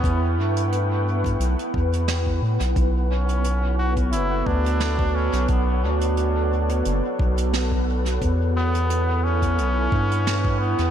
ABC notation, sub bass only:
X:1
M:4/4
L:1/16
Q:"Swing 16ths" 1/4=88
K:Bm
V:1 name="Sub bass" clef=bass
E,,2 G,,6 B,,, z E,,4 A,, B,,, | B,,,8 F,,,2 D,,4- D,, B,,, | B,,,2 D,,6 F,,, z B,,,6 | E,,8 B,,,2 G,,4- G,, E,, |]